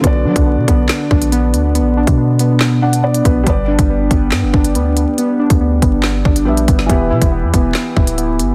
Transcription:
<<
  \new Staff \with { instrumentName = "Felt piano" } { \time 4/4 \key b \minor \tempo 4 = 140 << { r1 | r2 r8 fis''8 d''8 b'8 | r1 | r1 |
r1 | } \\ { <d b fis' d''>1~ | <d b fis' d''>2.~ <d b fis' d''>8 <b, b fis'>8 | <g g' b' d''>1~ | <g g' b' d''>2. <g g' b' e''>4 |
<e e' g' b'>1 | } >> }
  \new Staff \with { instrumentName = "Synth keys" } { \time 4/4 \key b \minor b8 d'8 b8 b8 b8 d'8 b8 b8 | b8 d'8 b8 b8 b8 d'8 b8 b8 | b8 d'8 b8 b8 b8 d'8 b8 b8 | b8 d'8 b8 b8 b8 d'8 b8 b8 |
b8 e'8 b8 b8 b8 e'8 b8 b8 | }
  \new Staff \with { instrumentName = "808-style bass" } { \clef bass \time 4/4 \key b \minor b,,8 fis16 b,,8 b,16 b,,8 r8 ais,,4 d,8~ | d,32 ais,,8~ ais,,32 b,2~ b,8. ais,,8 | g,,8. g,,8. g,,8 g,16 g,,16 g,,8 d,8. r16 | r8. d,8. g,,4 g,,8 ais,,8 g,,8 |
e,,8 b,16 e,,8 e,16 e,,8 r8 d,,4 g,,8 | }
  \new DrumStaff \with { instrumentName = "Drums" } \drummode { \time 4/4 <hh bd>8. <hh bd>16 r8 <hh bd>8 <hc hh sn>8 bd16 hh16 hh8 hh8 | hh8. <hh bd>16 r8 hh8 <hc sn>8. hh16 r16 hh16 <hh bd>8 | <hh bd>8. <hh bd>16 r8 <hh bd>8 <hc hh sn>8 bd16 hh16 hh8 hh8 | hh8. <hh bd>16 r8 <hh bd>8 <hc sn>8 bd16 hh16 r16 hh16 <hh bd>16 sn16 |
<hh bd>8. <hh bd>16 r8 <hh bd>8 <hc hh sn>8 bd16 hh16 hh8 hh8 | }
>>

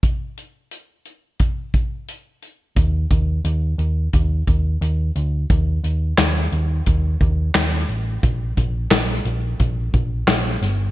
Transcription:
<<
  \new Staff \with { instrumentName = "Picked electric bass" } { \clef bass \time 4/4 \key ees \lydian \tempo 4 = 88 r1 | ees,8 ees,8 ees,8 ees,8 ees,8 ees,8 ees,8 d,8 | ees,8 ees,8 ees,8 ees,8 ees,8 ees,8 ees,8 a,,8 | bes,,8 bes,,8 bes,,8 bes,,8 bes,,8 bes,,8 bes,,8 g,,8 | }
  \new DrumStaff \with { instrumentName = "Drums" } \drummode { \time 4/4 <hh bd>8 hh8 hh8 hh8 <hh bd>8 <hh bd>8 hh8 hh8 | <hh bd>8 <hh bd>8 hh8 hh8 <hh bd>8 <hh bd>8 hh8 hh8 | <hh bd>8 hh8 <hc hh sn>8 hh8 <hh bd>8 <hh bd>8 <hc hh sn>8 hh8 | <hh bd>8 <hh bd>8 <hc hh sn>8 hh8 <hh bd>8 <hh bd>8 <hc hh sn>8 <hh sn>8 | }
>>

